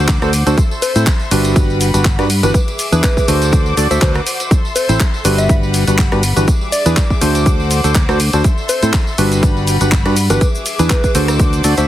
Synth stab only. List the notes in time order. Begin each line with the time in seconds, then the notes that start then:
0.22 D3 D4 F#4 A4 C5
0.46 D4 F#4 A4 C5
0.96 A2 C4 E4 A4 C5
1.31 G3 D4 F#4 G4 B4
1.94 G3 D4 F#4 G4 B4
2.19 G3 D4 F#4 G4 B4
2.43 E3 D4 F#4 G4 B4
2.92 E3 D4 E4 G#4 B4
3.28 D3 D4 F#4 A4 C5
3.77 D3 D4 F#4 A4 D5
3.91 D3 D4 F#4 A4 E5
4.02 D3 D4 F#4 A4 B4
4.89 A2 C4 E4 A4 C5
5.25 G3 D4 F#4 G4 B4
5.87 G3 D4 F#4 G4 B4
6.12 G3 D4 F#4 G4 B4
6.36 E3 D4 F#4 G4 B4
6.86 E3 D4 E4 G#4 B4
7.21 D3 D4 F#4 A4 C5
7.84 D3 D4 F#4 A4 C5
8.09 D3 D4 F#4 A4 C5
8.33 D4 F#4 A4 C5
8.83 A2 C4 E4 A4 C5
9.18 G3 D4 F#4 G4 B4
9.81 G3 D4 F#4 G4 B4
10.05 G3 D4 F#4 G4 B4
10.30 E3 D4 F#4 G4 B4
10.79 E3 D4 E4 G#4 B4
11.15 D3 D4 F#4 A4 C5
11.64 D3 D4 F#4 A4 D5
11.78 D3 D4 F#4 A4 E5